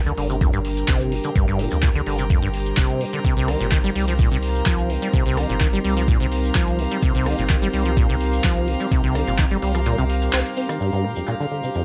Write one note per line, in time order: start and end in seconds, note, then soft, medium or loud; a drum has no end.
0.00 0.13 D2 medium
0.00 10.77 G3 medium
0.00 3.21 D4 medium
0.00 3.21 G4 medium
0.00 11.85 G4 medium
0.00 3.21 A#4 medium
0.00 11.85 C5 medium
0.00 0.21 F5 medium
0.00 11.85 A#5 medium
0.06 0.12 D3 loud
0.06 4.87 G5 medium
0.06 closed hi-hat soft
0.06 cabasa soft
0.18 0.49 G1 medium
0.18 0.28 D3 medium
0.18 open hi-hat medium
0.30 0.36 C3 medium
0.30 closed hi-hat soft
0.30 cabasa medium
0.41 0.51 F2 loud
0.41 kick loud
0.41 closed hi-hat medium
0.41 cabasa medium
0.53 0.84 G1 medium
0.53 0.60 G2 loud
0.53 closed hi-hat soft
0.53 cabasa soft
0.65 open hi-hat loud
0.77 closed hi-hat soft
0.77 cabasa medium
0.88 1.20 G1 medium
0.88 1.14 C3 loud
0.88 kick loud
0.88 clap loud
0.88 closed hi-hat medium
0.88 cabasa medium
1.01 closed hi-hat soft
1.01 cabasa soft
1.12 1.16 A#2 loud
1.12 open hi-hat medium
1.24 1.31 D3 medium
1.24 closed hi-hat soft
1.24 cabasa medium
1.36 1.67 G1 medium
1.36 1.46 G2 loud
1.36 kick loud
1.36 closed hi-hat medium
1.36 cabasa medium
1.48 1.61 G2 loud
1.48 closed hi-hat soft
1.48 cabasa soft
1.59 1.69 A#2 loud
1.59 open hi-hat loud
1.71 2.02 D2 medium
1.71 1.78 F2 medium
1.71 closed hi-hat soft
1.71 cabasa medium
1.82 1.90 A#2 loud
1.82 kick loud
1.82 clap loud
1.82 closed hi-hat medium
1.82 cabasa medium
1.95 2.01 D3 loud
1.95 closed hi-hat soft
1.95 cabasa soft
2.06 2.38 G1 medium
2.06 2.17 D3 medium
2.06 open hi-hat medium
2.19 2.25 C3 medium
2.19 closed hi-hat soft
2.19 cabasa medium
2.30 2.40 F2 loud
2.30 kick loud
2.30 closed hi-hat medium
2.30 cabasa medium
2.42 2.73 G1 medium
2.42 2.49 G2 loud
2.42 closed hi-hat soft
2.42 cabasa soft
2.54 open hi-hat loud
2.66 closed hi-hat soft
2.66 cabasa medium
2.77 2.87 F1 medium
2.77 3.02 C3 loud
2.77 kick loud
2.77 clap loud
2.77 closed hi-hat medium
2.77 cabasa medium
2.90 closed hi-hat soft
2.90 cabasa soft
3.01 3.05 A#2 loud
3.01 open hi-hat medium
3.13 3.20 D3 medium
3.13 closed hi-hat soft
3.13 cabasa medium
3.25 3.56 C2 medium
3.25 3.35 C3 loud
3.25 10.77 C4 medium
3.25 10.77 D#4 medium
3.25 10.77 A#4 medium
3.25 kick loud
3.25 closed hi-hat medium
3.25 cabasa medium
3.37 3.50 C3 loud
3.37 closed hi-hat soft
3.37 cabasa soft
3.48 3.58 D#3 loud
3.48 cross-stick medium
3.48 open hi-hat loud
3.60 3.91 G1 medium
3.60 3.67 A#2 medium
3.60 closed hi-hat soft
3.60 cabasa medium
3.71 3.79 D#3 loud
3.71 kick loud
3.71 clap loud
3.71 closed hi-hat medium
3.71 cabasa medium
3.76 11.85 F5 medium
3.84 3.90 G3 loud
3.84 closed hi-hat soft
3.84 cabasa soft
3.95 4.27 C2 medium
3.95 4.06 G3 medium
3.95 open hi-hat medium
4.08 4.14 F3 medium
4.08 closed hi-hat soft
4.08 cabasa medium
4.19 4.29 A#2 loud
4.19 kick loud
4.19 closed hi-hat medium
4.19 cabasa medium
4.31 4.62 C2 medium
4.31 4.38 C3 loud
4.31 closed hi-hat soft
4.31 cabasa soft
4.43 open hi-hat loud
4.55 closed hi-hat soft
4.55 cabasa medium
4.66 4.98 C2 medium
4.66 4.91 F3 loud
4.66 kick loud
4.66 clap loud
4.66 closed hi-hat medium
4.66 cabasa medium
4.79 closed hi-hat soft
4.79 cabasa soft
4.90 4.94 D#3 loud
4.90 open hi-hat medium
5.02 5.08 G3 medium
5.02 closed hi-hat soft
5.02 cabasa medium
5.13 5.45 C2 loud
5.13 5.24 C3 loud
5.13 kick loud
5.13 closed hi-hat medium
5.13 cabasa medium
5.25 5.39 C3 loud
5.25 closed hi-hat soft
5.25 cabasa soft
5.37 5.47 D#3 loud
5.37 cross-stick medium
5.37 open hi-hat loud
5.49 5.80 G1 medium
5.49 5.56 A#2 medium
5.49 closed hi-hat soft
5.49 cabasa medium
5.60 5.68 D#3 loud
5.60 kick loud
5.60 clap loud
5.60 closed hi-hat medium
5.60 cabasa medium
5.73 5.79 G3 loud
5.73 closed hi-hat soft
5.73 cabasa soft
5.84 6.16 C2 medium
5.84 5.95 G3 medium
5.84 open hi-hat medium
5.97 6.03 F3 medium
5.97 closed hi-hat soft
5.97 cabasa medium
6.08 6.18 A#2 loud
6.08 kick loud
6.08 closed hi-hat medium
6.08 cabasa medium
6.20 6.51 C2 medium
6.20 6.27 C3 loud
6.20 closed hi-hat soft
6.20 cabasa soft
6.32 open hi-hat loud
6.44 closed hi-hat soft
6.44 cabasa medium
6.55 6.87 C2 medium
6.55 6.80 F3 loud
6.55 kick loud
6.55 clap loud
6.55 closed hi-hat medium
6.55 cabasa medium
6.68 closed hi-hat soft
6.68 cabasa soft
6.79 6.83 D#3 loud
6.79 open hi-hat medium
6.91 6.97 G3 medium
6.91 closed hi-hat soft
6.91 cabasa medium
7.02 7.34 C2 medium
7.02 7.13 C3 loud
7.02 kick loud
7.02 closed hi-hat medium
7.02 cabasa medium
7.15 7.28 C3 loud
7.15 closed hi-hat soft
7.15 cabasa soft
7.26 7.36 D#3 loud
7.26 cross-stick medium
7.26 open hi-hat loud
7.38 7.69 G1 medium
7.38 7.45 A#2 medium
7.38 closed hi-hat soft
7.38 cabasa medium
7.49 7.57 D#3 loud
7.49 kick loud
7.49 clap loud
7.49 closed hi-hat medium
7.49 cabasa medium
7.62 7.68 G3 loud
7.62 closed hi-hat soft
7.62 cabasa soft
7.73 8.05 C2 medium
7.73 7.84 G3 medium
7.73 open hi-hat medium
7.85 7.92 F3 medium
7.85 closed hi-hat soft
7.85 cabasa medium
7.97 8.07 A#2 loud
7.97 kick loud
7.97 closed hi-hat medium
7.97 cabasa medium
8.09 8.40 C2 loud
8.09 8.16 C3 loud
8.09 closed hi-hat soft
8.09 cabasa soft
8.21 open hi-hat loud
8.33 closed hi-hat soft
8.33 cabasa medium
8.44 8.76 C2 medium
8.44 8.69 F3 loud
8.44 kick loud
8.44 clap loud
8.44 closed hi-hat medium
8.44 cabasa medium
8.56 closed hi-hat soft
8.56 cabasa soft
8.68 8.72 D#3 loud
8.68 open hi-hat medium
8.80 8.86 G3 medium
8.80 closed hi-hat soft
8.80 cabasa medium
8.91 9.23 C2 medium
8.91 9.02 C3 loud
8.91 kick loud
8.91 closed hi-hat loud
8.91 cabasa medium
9.04 9.17 C3 medium
9.04 closed hi-hat soft
9.04 cabasa soft
9.15 9.25 D#3 loud
9.15 cross-stick medium
9.15 open hi-hat loud
9.27 9.58 G1 medium
9.27 9.34 A#2 medium
9.27 closed hi-hat soft
9.27 cabasa medium
9.38 9.46 D#3 loud
9.38 kick loud
9.38 clap loud
9.38 closed hi-hat medium
9.38 cabasa medium
9.51 9.57 G3 loud
9.51 closed hi-hat soft
9.51 cabasa soft
9.62 9.94 C2 medium
9.62 9.73 G3 medium
9.62 open hi-hat medium
9.74 9.81 F3 medium
9.74 cross-stick medium
9.74 closed hi-hat soft
9.74 cabasa medium
9.86 9.96 A#2 loud
9.86 closed hi-hat medium
9.86 cabasa medium
9.98 10.29 C2 medium
9.98 10.05 C3 loud
9.98 closed hi-hat soft
9.98 cabasa soft
10.10 open hi-hat loud
10.22 closed hi-hat soft
10.22 cabasa medium
10.33 10.43 C2 loud
10.33 10.40 C4 loud
10.33 clap loud
10.33 closed hi-hat medium
10.33 cabasa medium
10.46 closed hi-hat soft
10.46 cabasa soft
10.57 10.67 C4 medium
10.57 open hi-hat medium
10.69 10.79 D#3 medium
10.69 cross-stick medium
10.69 closed hi-hat soft
10.69 cabasa medium
10.80 10.91 G2 medium
10.80 11.85 G3 medium
10.80 11.85 D4 medium
10.80 11.85 F4 medium
10.80 11.85 A#4 medium
10.80 cabasa medium
10.92 11.06 G2 medium
10.92 cabasa soft
11.04 11.14 A#2 loud
11.04 cross-stick medium
11.16 11.23 F2 medium
11.16 cabasa medium
11.27 11.35 A#2 medium
11.27 clap loud
11.27 cabasa medium
11.40 11.46 D3 loud
11.40 cabasa soft
11.51 11.62 D3 medium
11.51 closed hi-hat medium
11.63 11.70 C3 medium
11.63 closed hi-hat soft
11.63 cabasa medium
11.74 11.85 F2 loud
11.74 closed hi-hat medium
11.74 cabasa medium